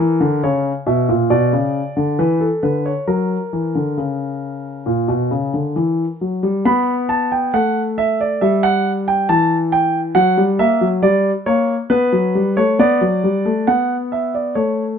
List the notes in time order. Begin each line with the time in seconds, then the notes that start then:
Already playing: A#4
0.00 E3
0.20 D3
0.43 C#3 C#5
0.87 B2 E5
1.09 A#2
1.30 B2 D5
1.53 C#3
1.97 D3
2.19 E3 B4
2.40 A4
2.63 D3 B4
2.86 C#5
3.07 F#3 A#4
3.53 E3
3.75 D3
3.97 C#3
4.86 A#2
5.08 B2
5.31 C#3
5.54 D3
5.76 E3
6.21 F#3
6.43 G3
6.65 B3 B5
7.09 A5
7.32 G5
7.54 A3 F#5
7.98 E5
8.21 D5
8.41 G3 E5
8.63 F#5
9.08 G5
9.29 E3 A5
9.72 G5
10.15 F#3 F#5
10.37 G3
10.59 A#3 E5
10.81 F#3
11.02 G3 D5
11.46 A#3 C#5
11.90 B3 B4
12.12 F#3
12.35 G3
12.57 A3 C#5
12.79 B3 D5
13.01 F#3
13.24 G3
13.45 A3
13.67 B3 F#5
14.12 E5
14.35 D5
14.55 A3 C#5